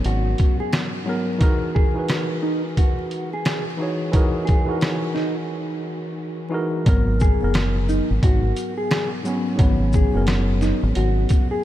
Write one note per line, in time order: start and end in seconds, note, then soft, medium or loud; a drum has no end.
0.00 1.04 G#2 medium
0.00 1.06 F#3 medium
0.00 1.08 B3 medium
0.00 1.43 C#4 loud
0.00 0.37 A#4 medium
0.00 1.43 C#5 medium
0.05 0.33 G#1 medium
0.05 0.57 F#4 medium
0.05 closed hi-hat medium
0.38 kick medium
0.38 closed hi-hat medium
0.60 0.72 G#4 medium
0.73 cross-stick medium
0.73 snare loud
0.73 closed hi-hat medium
1.04 1.36 G#2 medium
1.04 1.37 F#3 medium
1.04 1.37 B3 medium
1.09 1.38 A#4 loud
1.38 1.85 E3 medium
1.38 1.86 D#4 medium
1.38 1.86 F#4 medium
1.38 1.87 G#4 medium
1.38 kick loud
1.38 closed hi-hat medium
1.43 1.88 A#4 loud
1.75 2.06 G#4 medium
1.75 kick loud
1.94 3.08 E3 medium
1.94 3.08 D#4 medium
1.94 3.09 F#4 medium
1.94 3.10 G#4 medium
1.99 3.10 B4 medium
2.09 cross-stick loud
2.09 snare loud
2.09 closed hi-hat medium
2.42 2.62 D#4 medium
2.77 3.30 F#4 medium
2.77 kick medium
2.77 closed hi-hat medium
3.11 closed hi-hat medium
3.33 3.64 G#4 medium
3.45 cross-stick medium
3.45 snare loud
3.45 closed hi-hat medium
3.77 4.09 E3 medium
3.77 4.09 D#4 medium
3.77 4.10 F#4 medium
3.77 4.10 G#4 medium
3.82 4.11 C#5 medium
4.12 4.58 E3 medium
4.12 4.59 D#4 medium
4.12 4.59 F#4 medium
4.12 4.60 G#4 medium
4.12 kick loud
4.12 closed hi-hat medium
4.16 4.61 A#4 medium
4.45 4.77 G#4 medium
4.45 kick loud
4.45 closed hi-hat medium
4.66 5.80 E3 medium
4.66 5.81 D#4 medium
4.66 5.81 F#4 medium
4.66 5.82 G#4 medium
4.71 5.83 A#4 medium
4.81 cross-stick medium
4.81 snare loud
4.81 closed hi-hat medium
5.14 5.34 D#4 medium
5.14 snare soft
6.50 6.81 E3 medium
6.50 6.82 D#4 medium
6.50 6.82 F#4 medium
6.50 6.83 G#4 medium
6.54 6.84 A#4 loud
6.84 7.33 G#1 loud
6.84 7.31 G#2 medium
6.84 7.32 F#3 medium
6.84 7.32 B3 medium
6.84 kick loud
6.84 closed hi-hat medium
6.89 7.33 A#4 loud
7.20 7.52 G#4 medium
7.20 kick loud
7.20 shaker medium
7.39 7.99 F#1 medium
7.39 8.53 G#2 medium
7.39 8.54 F#3 medium
7.39 8.55 B3 medium
7.44 8.55 A#4 medium
7.54 cross-stick loud
7.54 snare loud
7.54 closed hi-hat medium
7.89 8.08 D#4 medium
7.89 shaker medium
8.10 8.21 G#1 medium
8.23 8.51 G#1 loud
8.23 8.75 F#4 medium
8.23 kick loud
8.23 closed hi-hat medium
8.56 closed hi-hat medium
8.56 shaker medium
8.77 9.08 G#4 medium
8.91 cross-stick medium
8.91 snare loud
8.91 closed hi-hat medium
9.23 9.54 G#2 medium
9.23 9.55 F#3 medium
9.23 9.56 B3 medium
9.23 shaker soft
9.28 9.57 C#4 loud
9.56 10.05 G#1 loud
9.56 10.03 G#2 loud
9.56 10.04 F#3 medium
9.56 10.05 B3 medium
9.56 kick loud
9.56 closed hi-hat loud
9.60 10.05 C#5 medium
9.93 10.25 G#4 medium
9.93 kick loud
9.93 shaker medium
10.12 10.71 F#1 medium
10.12 11.26 G#2 medium
10.12 11.26 F#3 medium
10.12 11.27 B3 medium
10.17 11.28 A#4 medium
10.27 cross-stick loud
10.27 snare loud
10.27 closed hi-hat medium
10.61 10.81 D#4 medium
10.61 snare soft
10.61 shaker soft
10.83 10.94 G#1 medium
10.95 11.24 G#1 loud
10.95 11.48 F#4 medium
10.95 closed hi-hat medium
11.29 kick medium
11.29 closed hi-hat medium
11.29 shaker medium
11.51 11.63 G#4 medium